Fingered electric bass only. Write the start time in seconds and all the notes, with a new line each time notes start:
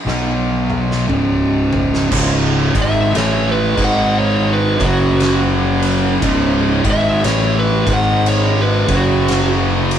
0.06 B1
1.09 C#1
2.12 C#1
2.75 G#1
3.14 A1
3.78 G#1
4.79 F#1
6.22 C#1
6.85 G#1
7.23 A1
7.86 G#1
8.88 F#1